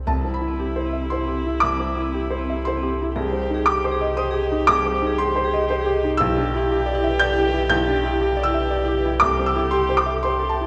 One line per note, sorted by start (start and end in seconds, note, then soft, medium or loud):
0.00 0.10 C4 soft
0.00 0.10 G4 soft
0.00 0.10 A4 soft
0.00 0.10 D5 medium
0.07 6.21 C2 medium
0.07 1.58 C2 soft
0.07 0.15 C4 medium
0.07 3.12 E4 medium
0.07 0.32 A5 medium
0.21 0.53 C4 soft
0.21 0.29 E4 soft
0.34 0.42 E4 soft
0.34 1.07 B5 medium
0.41 0.69 E4 soft
0.48 0.55 C4 medium
0.59 0.87 G4 soft
0.73 0.80 E4 soft
0.73 1.04 C5 soft
0.86 0.94 C4 medium
0.93 1.21 E5 soft
1.00 1.07 G4 soft
1.10 1.20 E4 medium
1.10 1.39 C5 soft
1.10 1.58 C6 medium
1.25 1.32 C4 medium
1.25 1.55 G4 soft
1.38 1.45 G4 medium
1.46 1.73 E4 soft
1.60 3.12 C2 medium
1.60 1.70 C4 medium
1.60 2.60 D6 medium
1.75 1.83 E4 soft
1.80 2.07 C4 soft
1.89 1.97 E4 medium
1.96 2.24 E4 soft
2.01 2.09 C4 medium
2.14 2.41 G4 medium
2.26 2.34 E4 soft
2.30 2.58 C5 medium
2.39 2.47 C4 medium
2.50 2.59 G4 medium
2.50 2.76 E5 soft
2.65 2.73 E4 medium
2.65 2.93 C5 medium
2.65 3.12 C6 medium
2.77 2.85 C4 medium
2.82 3.09 G4 medium
2.90 2.98 G4 medium
3.02 3.17 E4 medium
3.16 4.65 C2 medium
3.16 6.15 G4 medium
3.16 3.24 G#4 medium
3.29 3.60 C4 medium
3.29 3.37 C5 medium
3.42 3.49 C5 medium
3.50 3.77 D#4 medium
3.55 3.62 G#4 medium
3.66 3.94 G4 medium
3.66 4.13 D6 medium
3.80 3.87 C5 medium
3.84 4.11 C5 medium
3.91 3.99 G#4 medium
4.01 4.28 D#5 medium
4.01 4.12 D#5 medium
4.17 4.45 C5 medium
4.17 4.25 C5 medium
4.17 4.65 D#6 medium
4.31 4.61 G4 medium
4.31 4.38 G#4 loud
4.44 4.51 D#5 medium
4.52 4.79 D#4 medium
4.67 6.15 C2 medium
4.67 4.77 G#4 loud
4.67 5.15 D6 loud
4.81 4.89 C5 medium
4.86 5.13 C4 medium
4.94 5.02 C5 medium
5.02 5.29 D#4 medium
5.07 5.14 G#4 loud
5.18 5.46 G4 medium
5.18 6.15 C6 loud
5.32 5.39 C5 medium
5.36 5.62 C5 medium
5.45 5.52 G#4 loud
5.53 5.80 D#5 medium
5.53 5.64 D#5 medium
5.69 5.76 C5 medium
5.69 5.96 C5 medium
5.81 5.89 G#4 loud
5.86 6.13 G4 medium
5.94 6.02 D#5 medium
6.04 6.20 D#4 medium
6.17 9.23 B1 medium
6.17 7.67 B1 medium
6.17 6.27 E4 loud
6.17 9.19 G4 medium
6.17 7.15 E6 loud
6.32 6.39 G4 medium
6.37 6.63 D4 medium
6.44 6.52 G4 medium
6.54 6.80 E4 medium
6.54 6.64 E4 loud
6.71 6.97 G4 medium
6.82 6.89 G4 medium
6.86 7.13 D5 medium
6.95 7.02 E4 loud
7.04 7.30 E5 medium
7.09 7.16 B4 medium
7.19 7.28 G4 medium
7.19 7.47 D5 medium
7.19 7.66 G6 loud
7.33 7.40 E4 loud
7.38 7.64 G4 medium
7.45 7.53 B4 medium
7.53 7.80 E4 medium
7.69 9.18 B1 medium
7.69 7.77 E4 loud
7.69 8.41 G6 loud
7.82 7.90 G4 medium
7.87 8.14 D4 medium
7.96 8.03 G4 medium
8.03 8.30 E4 medium
8.03 8.14 E4 loud
8.21 8.48 G4 medium
8.33 8.40 G4 medium
8.37 8.64 D5 medium
8.43 8.53 E4 loud
8.43 8.92 E6 loud
8.54 8.81 E5 medium
8.59 8.67 B4 medium
8.71 8.80 G4 medium
8.71 8.98 D5 medium
8.85 8.92 E4 medium
8.85 9.15 G4 medium
8.98 9.05 B4 medium
9.06 9.23 E4 medium
9.20 10.67 C2 medium
9.20 10.23 G4 medium
9.20 9.31 A4 medium
9.20 9.45 D6 loud
9.37 9.67 C4 medium
9.37 9.44 C5 medium
9.46 9.56 C5 medium
9.46 9.71 E6 medium
9.55 9.83 E4 medium
9.60 9.68 A4 medium
9.71 10.01 G4 medium
9.71 9.96 C6 medium
9.87 9.95 C5 medium
9.87 10.18 C5 medium
9.97 10.07 A4 medium
9.97 10.23 D6 medium
10.06 10.36 E5 medium
10.13 10.21 E5 medium
10.23 10.54 C5 medium
10.23 10.34 C5 medium
10.23 10.49 C6 medium
10.27 10.67 G4 medium
10.39 10.67 G4 medium
10.39 10.48 A4 medium
10.49 10.67 A5 medium
10.54 10.62 E5 medium
10.61 10.67 E4 soft